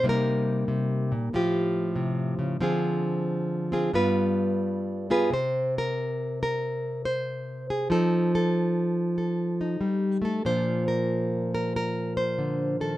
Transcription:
nylon-string guitar
0.03 C3 G3 A#3 D#4
0.09 A#4
0.68 C3
1.12 A#2
1.33 A2 F3 F4 G4
1.96 C3
2.39 C#3
2.61 D3 F3 C4 F4 G#4
3.72 C4 F4 G#4
3.93 G2 G3 B3 F4 B4
5.10 B3 F4 G#4 B4
5.30 C3 C5
5.78 A#4
6.43 A#4
7.05 C5
7.70 G#4
7.90 F3 C4 D#4 A4
8.35 A4
9.18 A4
9.61 D#4
9.81 G3
10.22 A3 A4
10.45 A#2 F3 D4 F4 C5
10.88 A#4
11.55 A#4
11.76 A#4
12.17 C5
12.38 D3
12.80 D#3 A4

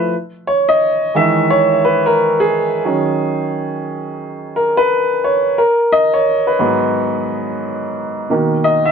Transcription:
upright piano
Already playing: F3 A3 E4 B4 E5
0.47 C#5
0.69 D#5
1.15 D#3 E3 G#3 E5
1.50 C#5
1.85 B4
2.06 A#4
2.40 G#4
2.85 D#3 F#3 C#4
4.56 A#4
4.77 B4
5.24 C#5
5.58 A#4
5.92 D#5
6.14 C#5
6.47 B4
6.59 G#2 F#3 B3
8.30 B2 D#3 A#3
8.64 D#5
8.85 E5

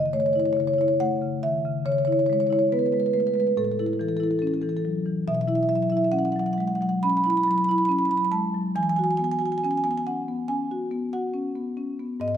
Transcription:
marimba
Already playing: C#3
0.05 D#5
0.13 A3 C#5
0.20 C#5
0.26 C#5
0.33 E4 C#5
0.40 C#5
0.45 C#5
0.53 C#5
0.57 C#3 C#5
0.67 C#5
0.74 C#5
0.78 E4 C#5
0.88 C#5
1.00 A3 F#5
1.21 C#3
1.43 D#3 E5
1.65 C#3
1.86 C#3 C#5
1.92 C#5
1.98 C#5
2.05 E4 C#5
2.12 C#5
2.19 C#5
2.26 G#3 C#5
2.33 C#5
2.40 C#5
2.47 E4 C#5
2.53 C#5
2.59 C#5
2.72 B3 B4
2.79 B4
2.86 B4
2.92 G#3 B4
3.00 B4
3.06 B4
3.13 A3 B4
3.20 B4
3.27 B4
3.34 G#3 B4
3.40 B4
3.47 B4
3.57 A2 A4
3.64 A4
3.71 A4
3.79 E4 A4
3.86 A4
3.93 A4
3.99 E3 A4
4.09 A4
4.17 E4 A4
4.24 A4
4.31 A4
4.39 C#4 A4
4.47 A4
4.54 A4
4.61 E3 A4
4.69 A4
4.77 A4
4.85 F#3
5.06 E3
5.28 B2 E5
5.34 E5
5.41 E5
5.48 E4 E5
5.55 E5
5.63 E5
5.69 F#3 E5
5.75 E5
5.82 E5
5.90 E4 E5
5.97 E5
6.04 E5
6.12 C#4 F#5
6.19 F#5
6.25 F#5
6.32 F#3 F#5
6.39 F#5
6.46 F#5
6.53 F#5
6.58 G#3 F#5
6.67 F#5
6.75 F#5
6.81 F#3 F#5
6.89 F#5
7.03 C#4 B5
7.09 B5
7.17 B5
7.24 E4 B5
7.30 B5
7.37 B5
7.43 B5
7.48 F#3 B5
7.58 B5
7.64 B5
7.69 E4 B5
7.78 B5
7.85 C#4 B5
7.92 B5
7.99 B5
8.05 B5
8.10 F#3 B5
8.17 B5
8.25 B5
8.31 G#3 A5
8.55 F#3
8.76 E3 G#5
8.83 G#5
8.89 G#5
8.96 F#4 G#5
9.04 G#5
9.11 G#5
9.17 B3 G#5
9.24 G#5
9.31 G#5
9.39 F#4 G#5
9.46 G#5
9.52 G#5
9.58 G#5
9.64 C#4 G#5
9.71 G#5
9.77 G#5
9.84 B3 G#5
9.91 G#5
9.98 G#5
10.06 C#4 F#5
10.28 B3
10.48 C#4 G#5
10.71 F#4
10.91 B3
11.13 F#4 F#5
11.34 C#4
11.56 B3
11.77 C#4
11.99 B3
12.20 G#2 D#5
12.28 D#5

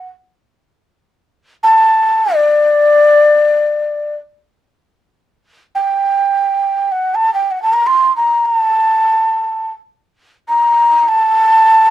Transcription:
ney
1.63 A5
2.34 D5
5.75 G5
6.92 F#5
7.15 A5
7.34 G5
7.51 F#5
7.62 A5
7.73 A#5
7.87 C6
8.16 A#5
8.45 A5
10.49 A#5
11.08 A5

